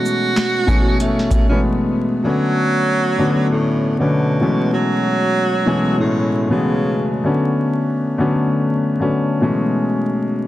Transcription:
Already playing: grand piano B2 E3 F#3 G#3 A3 C#4, tenor saxophone F#4
0.06 shaker
0.37 snare, clap, closed hi-hat
0.66 grand piano B2 E3 F#3 A3 C#4 G#4, kick, shaker
1.00 tenor saxophone A3, closed hi-hat
1.19 snare
1.31 kick, closed hi-hat, shaker
1.49 grand piano B2 E3 F#3 G#3 A3 B3, tenor saxophone C#4
2.24 grand piano D3 F#3 A3 B3 C#4, tenor saxophone F#3
3.18 grand piano D3 F#3 A3 B3 C#4
3.50 tenor saxophone A2
3.99 tenor saxophone B2, grand piano D3 F#3 A3 B3 C#4
4.40 grand piano B2 E3 F#3 G#3 A3 C#4
4.73 tenor saxophone F#3
5.66 grand piano B2 E3 F#3 G#3 A3 C#4
5.99 tenor saxophone A2
6.49 grand piano B2 E3 F#3 G#3 A3 B3, tenor saxophone C#3
7.24 grand piano D3 F#3 A3 B3 C#4
8.18 grand piano D3 F#3 A3 B3 C#4
8.99 grand piano D3 F#3 A3 B3 C#4
9.41 grand piano B2 E3 F#3 G#3 A3 C#4

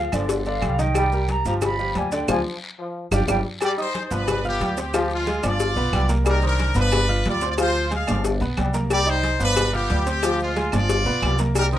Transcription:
Already playing: flute F5
0.12 upright bass G1, upright piano D3 D4 D5, trombone section F3, flute D5, high conga, low agogo, short guiro, claves, maracas
0.29 cowbell, high conga, long guiro, maracas
0.46 upright piano D3 D4 D5, flute F5, high conga, low agogo, maracas
0.62 upright bass C2, trombone section G3, cowbell, high conga, low timbale, low agogo, short guiro, claves, maracas
0.78 upright piano D#3 D#4 D#5, flute G5, cowbell, high conga, short guiro, maracas
0.95 trombone section G3, cowbell, high conga, low agogo, long guiro, claves, maracas
1.12 upright piano G3 G4 A#4, high conga, maracas
1.28 flute A#5, cowbell, high conga, low agogo, short guiro, maracas
1.45 upright bass G1, upright piano F3 F4 G4, trombone section F3, flute A#5, high conga, low agogo, short guiro, maracas
1.61 flute B5, cowbell, high conga, low conga, low agogo, long guiro, claves, maracas
1.79 upright piano F3 F4 G4, high conga, maracas
1.95 upright bass D2, trombone section G3, flute G#5, cowbell, high conga, low timbale, low agogo, short guiro, maracas
2.12 upright piano D3 D4 D5, flute G5, cowbell, short guiro, maracas
2.28 upright bass D2, trombone section F3, upright piano C4 D4 F4, flute G#5, cowbell, high conga, high timbale, long guiro, claves, maracas
2.79 trombone section F3
3.11 upright bass G1, upright piano D4 F4 G4, flute G5, cowbell, high conga, high timbale, long guiro, claves, maracas
3.28 upright bass G1, trombone section G3, upright piano D4 F4 G4, flute G5, cowbell, high conga, high timbale, long guiro, claves, maracas
3.60 trombone section G3, horn section G4 D5, cowbell, high conga, low agogo, long guiro, claves, maracas
3.77 upright piano D#4 D#5 D#6, horn section D#4 C5, high conga, maracas
3.94 cowbell, high conga, low agogo, short guiro, maracas
4.06 horn section C5
4.10 upright bass G1, trombone section F3, upright piano B3 B4 B5, horn section D4 B4, high conga, low agogo, short guiro, maracas
4.27 cowbell, high conga, low conga, low agogo, long guiro, claves, maracas
4.45 horn section B3 G4, upright piano F4 F5 F6, high conga, low conga, maracas
4.60 upright bass D2, trombone section G3, cowbell, high conga, low agogo, short guiro, maracas
4.77 upright piano C4 C5 C6, horn section C4 G4, cowbell, short guiro, maracas
4.93 trombone section F3, upright piano F3 F4 F5, cowbell, high conga, low agogo, long guiro, claves, maracas
5.10 horn section G#3 F4, high conga, maracas
5.27 upright piano G#3 G#4 G#5, cowbell, high conga, low agogo, short guiro, maracas
5.43 upright bass G1, trombone section F3, upright piano D4 D5 D6, horn section F4 D5, high conga, low agogo, short guiro, claves, maracas
5.60 cowbell, high conga, long guiro, maracas
5.76 upright bass B1, upright piano B3 B4 B5, high conga, low agogo, maracas
5.92 upright bass C2, trombone section G3, cowbell, high conga, low agogo, short guiro, claves, maracas
6.09 upright piano A#3 A#4 A#5, cowbell, high conga, short guiro, maracas
6.25 trombone section G3, horn section D#4 A#4, cowbell, low agogo, long guiro, claves, maracas
6.42 upright piano D#3 C5 D#6, horn section D4 A#4, high conga, maracas
6.58 cowbell, high conga, low agogo, short guiro, maracas
6.74 upright bass G1, trombone section F3, upright piano B3 B4 B5, horn section D4 B4, high conga, low agogo, short guiro, maracas
6.92 cowbell, high conga, low conga, low agogo, long guiro, claves, maracas
7.08 upright piano F4 F5 F6, high conga, low conga, maracas
7.25 upright bass D2, trombone section G3, horn section F4 D5, cowbell, high conga, low agogo, short guiro, maracas
7.41 upright piano C4 C5 C6, cowbell, short guiro, maracas
7.49 horn section F4 D5
7.58 upright piano F3 F4 F5, trombone section F3, horn section F4 C5, cowbell, high conga, low agogo, long guiro, claves, maracas
7.75 high conga, maracas
7.91 upright piano G#3 G#4 G#5, horn section G#4 F5, cowbell, high conga, low agogo, short guiro, maracas
8.07 upright bass G1, trombone section F3, upright piano D4 D5 D6, high conga, low agogo, short guiro, claves, maracas
8.24 cowbell, high conga, long guiro, maracas
8.40 upright bass B1, upright piano B3 B4 B5, high conga, low agogo, maracas
8.57 upright bass C2, trombone section G3, cowbell, high conga, low timbale, low agogo, short guiro, claves, maracas
8.74 upright piano A#3 A#4 A#5, cowbell, high conga, short guiro, maracas
8.90 trombone section G3, horn section G4 D5, cowbell, low agogo, long guiro, claves, maracas
9.06 upright piano D#4 D#5 D#6, horn section D#4 C5, high conga, maracas
9.23 cowbell, high conga, low agogo, short guiro, maracas
9.39 upright bass G1, trombone section F3, upright piano B3 B4 B5, horn section D4 B4, high conga, low agogo, short guiro, maracas
9.56 cowbell, high conga, low conga, low agogo, long guiro, claves, maracas
9.73 horn section B3 G4, upright piano F4 F5 F6, high conga, low conga, maracas
9.90 upright bass D2, trombone section G3, cowbell, high conga, low agogo, short guiro, maracas
10.06 upright piano C4 C5 C6, horn section C4 G4, cowbell, high conga, short guiro, maracas
10.22 upright piano F3 F4 F5, trombone section F3, cowbell, high conga, low agogo, long guiro, claves, maracas
10.40 horn section G#3 F4, high conga, maracas
10.56 upright piano G#3 G#4 G#5, cowbell, high conga, low agogo, short guiro, maracas
10.72 upright bass G1, trombone section F3, upright piano D4 D5 D6, horn section F4 D5, high conga, low agogo, short guiro, claves, maracas
10.89 cowbell, high conga, long guiro, maracas
11.05 upright bass B1, upright piano B3 B4 B5, high conga, low agogo, maracas
11.22 upright bass C2, trombone section G3, cowbell, high conga, low agogo, short guiro, claves, maracas
11.38 upright piano A#3 A#4 A#5, cowbell, high conga, short guiro, maracas
11.55 trombone section G3, horn section D#4 A#4, cowbell, low agogo, long guiro, claves, maracas
11.72 upright piano D#3 C5 D#6, horn section D4 A#4, high conga, maracas

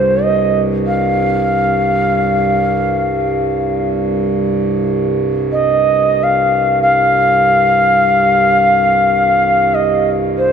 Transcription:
Already playing: harmonium C2 G2, native american-style wooden flute C5
0.23 native american-style wooden flute D#5
0.87 native american-style wooden flute F5
5.52 native american-style wooden flute D#5
6.23 native american-style wooden flute F5
6.82 native american-style wooden flute F5
9.75 native american-style wooden flute D#5
10.38 native american-style wooden flute C5

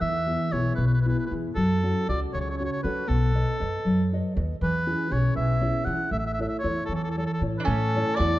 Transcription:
0.00 upright bass E2, nylon-string guitar E3, oboe E5
0.26 nylon-string guitar B3 E4 G#4
0.52 upright bass B1, nylon-string guitar B3 E4 G#4, oboe C#5
0.75 upright bass B1, nylon-string guitar B2, oboe B4
0.87 oboe B4
0.94 oboe B4
1.01 oboe B4
1.05 nylon-string guitar B3 E4 G#4, oboe B4
1.19 oboe B4
1.26 oboe B4
1.30 upright bass E2, nylon-string guitar B3 E4 G#4
1.55 upright bass F#2, nylon-string guitar F#3, oboe A4
1.83 nylon-string guitar C#4 F#4 A4
2.09 upright bass C#2, nylon-string guitar C#4 F#4 A4, oboe D5
2.33 upright bass C#2, nylon-string guitar C#3, oboe C#5
2.41 oboe C#5
2.50 oboe C#5
2.57 nylon-string guitar C#4 F#4 A4, oboe C#5
2.65 oboe C#5
2.73 oboe C#5
2.83 upright bass F#3, nylon-string guitar C#4 F#4 A4, oboe B4
3.07 upright bass B1, nylon-string guitar B3, oboe A4
3.35 nylon-string guitar A4 B4 D#5
3.60 upright bass F#2, nylon-string guitar A4 B4 D#5
3.85 upright bass F#2, nylon-string guitar F#3
4.13 nylon-string guitar A4 B4 D#5
4.36 upright bass D#2, nylon-string guitar A4 B4 D#5
4.61 upright bass E2, nylon-string guitar E3, oboe B4
4.86 nylon-string guitar C#4 E4 G#4
5.10 upright bass B1, nylon-string guitar C#4 E4 G#4, oboe C#5
5.35 upright bass B1, nylon-string guitar B2, oboe E5
5.61 nylon-string guitar C#4 E4 G#4
5.85 upright bass E3, nylon-string guitar C#4 E4 G#4, oboe F#5
6.11 upright bass A1, nylon-string guitar A3, oboe E5
6.19 oboe E5
6.26 oboe E5
6.34 oboe E5
6.39 nylon-string guitar E4 A4 C#5, oboe E5
6.48 oboe E5
6.59 oboe C#5
6.64 upright bass E2, nylon-string guitar E4 A4 C#5
6.86 upright bass E2, oboe A4
6.92 nylon-string guitar E3, oboe A4
7.04 oboe A4
7.11 oboe A4
7.16 nylon-string guitar E4 A4 C#5, oboe A4
7.27 oboe A4
7.33 oboe A4
7.41 upright bass A2, nylon-string guitar E4 A4 C#5
7.58 mandolin D4, oboe B4
7.64 upright bass A2, nylon-string guitar A3, mandolin C#4, oboe A4
7.95 nylon-string guitar E4 A4 C#5
8.16 nylon-string guitar E4 A4, mandolin F#4, oboe D5
8.20 upright bass E2, nylon-string guitar C#5

